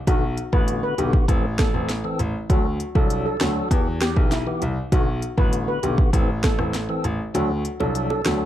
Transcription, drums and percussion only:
0.07 kick loud
0.07 closed hi-hat medium
0.37 closed hi-hat medium
0.53 kick loud
0.68 closed hi-hat medium
0.98 closed hi-hat medium
1.13 kick loud
1.28 kick medium
1.28 closed hi-hat medium
1.59 kick loud
1.59 cross-stick medium
1.59 snare loud
1.59 closed hi-hat medium
1.89 snare medium
1.89 closed hi-hat medium
2.19 closed hi-hat medium
2.50 kick loud
2.50 closed hi-hat medium
2.80 closed hi-hat medium
2.95 kick loud
3.10 closed hi-hat medium
3.41 cross-stick medium
3.41 snare loud
3.41 closed hi-hat medium
3.71 kick loud
3.71 closed hi-hat medium
4.01 cross-stick medium
4.01 snare loud
4.01 closed hi-hat medium
4.17 kick loud
4.32 snare medium
4.32 closed hi-hat medium
4.62 closed hi-hat medium
4.92 kick loud
4.92 closed hi-hat medium
5.22 closed hi-hat medium
5.38 kick medium
5.53 closed hi-hat medium
5.83 closed hi-hat medium
5.98 kick loud
6.13 kick loud
6.13 closed hi-hat medium
6.44 kick loud
6.44 cross-stick medium
6.44 snare loud
6.44 closed hi-hat medium
6.59 cross-stick loud
6.74 snare medium
6.74 closed hi-hat medium
7.04 closed hi-hat medium
7.35 closed hi-hat medium
7.35 high bongo medium
7.65 closed hi-hat medium
7.80 high bongo medium
7.95 closed hi-hat medium
8.10 high bongo medium
8.26 cross-stick medium
8.26 snare loud
8.26 closed hi-hat medium
8.26 low bongo medium

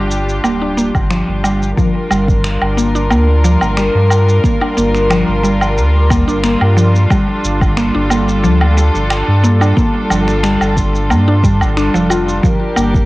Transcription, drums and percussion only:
0.11 shaker medium
0.29 shaker soft
0.44 low woodblock medium
0.44 shaker soft
0.78 shaker medium
0.95 kick medium
0.95 low woodblock medium
0.95 shaker soft
1.10 finger snap loud
1.10 shaker soft
1.44 low woodblock medium
1.44 shaker medium
1.62 shaker soft
1.77 kick loud
1.77 shaker soft
2.11 low woodblock medium
2.11 shaker medium
2.28 kick loud
2.28 shaker soft
2.44 finger snap loud
2.44 shaker soft
2.61 low woodblock medium
2.78 shaker medium
2.95 shaker soft
3.10 low woodblock medium
3.10 shaker soft
3.45 shaker medium
3.61 low woodblock medium
3.61 shaker soft
3.77 finger snap loud
3.77 shaker soft
4.10 low woodblock medium
4.10 shaker medium
4.29 shaker soft
4.44 kick loud
4.44 shaker soft
4.62 low woodblock medium
4.78 shaker medium
4.95 finger snap soft
4.95 shaker soft
5.11 finger snap loud
5.11 low woodblock medium
5.11 shaker soft
5.45 shaker medium
5.61 low woodblock medium
5.61 shaker soft
5.78 shaker soft
6.10 kick loud
6.10 low woodblock medium
6.10 shaker medium
6.29 shaker soft
6.44 finger snap loud
6.44 shaker soft
6.61 low woodblock medium
6.78 shaker medium
6.95 shaker soft
7.10 kick loud
7.10 low woodblock medium
7.10 shaker soft
7.45 shaker medium
7.61 kick loud
7.61 low woodblock medium
7.61 shaker soft
7.77 finger snap loud
7.77 shaker soft
8.10 low woodblock medium
8.10 shaker medium
8.29 shaker soft
8.44 shaker soft
8.61 low woodblock medium
8.78 shaker medium
8.95 shaker soft
9.10 finger snap loud
9.10 low woodblock medium
9.10 shaker soft
9.44 shaker medium
9.61 low woodblock medium
9.61 shaker soft
9.77 kick loud
9.77 shaker soft
10.10 low woodblock medium
10.10 shaker medium
10.28 finger snap soft
10.28 shaker soft
10.44 finger snap loud
10.44 shaker soft
10.61 low woodblock medium
10.61 shaker soft
10.77 kick medium
10.77 shaker medium
10.95 shaker soft
11.10 low woodblock medium
11.10 shaker soft
11.44 kick loud
11.44 shaker medium
11.61 low woodblock medium
11.61 shaker soft
11.77 finger snap loud
11.77 shaker soft
11.95 shaker soft
12.10 low woodblock medium
12.10 shaker medium
12.29 shaker soft
12.44 kick loud
12.44 shaker soft
12.76 low woodblock medium
12.76 shaker medium
12.95 kick loud
12.95 shaker soft

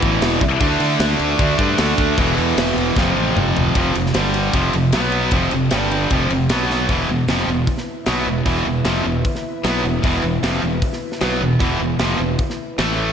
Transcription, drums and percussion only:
0.02 kick medium
0.02 crash medium
0.22 snare loud
0.22 crash medium
0.41 kick medium
0.41 crash medium
0.60 kick loud
0.60 crash medium
0.80 crash medium
1.00 snare loud
1.00 crash medium
1.19 crash medium
1.39 kick loud
1.39 crash medium
1.59 kick medium
1.59 crash medium
1.78 snare loud
1.78 crash medium
1.98 kick medium
1.98 crash medium
2.18 kick loud
2.18 crash medium
2.38 crash medium
2.57 snare loud
2.57 crash medium
2.78 crash medium
2.97 kick loud
2.97 snare medium
3.37 mid tom loud
3.57 floor tom loud
3.75 kick loud
3.75 ride medium
3.95 ride medium
4.06 snare soft
4.14 snare loud
4.14 ride loud
4.34 ride medium
4.54 kick loud
4.54 ride medium
4.73 ride medium
4.92 snare loud
4.92 ride loud
5.12 ride medium
5.31 kick loud
5.31 ride medium
5.51 ride medium
5.71 snare loud
5.71 ride medium
5.91 ride medium
6.10 kick loud
6.10 ride medium
6.30 ride medium
6.49 snare loud
6.49 ride medium
6.70 snare medium
6.89 kick medium
6.89 open hi-hat soft
7.28 snare loud
7.28 open hi-hat medium
7.67 kick medium
7.67 open hi-hat soft
7.78 snare soft
8.06 snare loud
8.06 open hi-hat medium
8.46 kick medium
8.46 open hi-hat soft
8.85 snare loud
8.85 open hi-hat soft
9.25 kick medium
9.25 open hi-hat soft
9.35 snare soft
9.64 snare loud
9.64 open hi-hat soft
10.04 kick loud
10.04 open hi-hat medium
10.43 snare loud
10.43 open hi-hat soft
10.82 kick medium
10.82 open hi-hat soft
10.93 snare soft
11.12 snare soft
11.21 snare loud
11.21 open hi-hat medium
11.60 kick loud
11.60 open hi-hat medium
11.99 snare loud
11.99 open hi-hat soft
12.39 kick medium
12.39 open hi-hat soft
12.50 snare soft
12.78 snare loud
12.78 open hi-hat soft

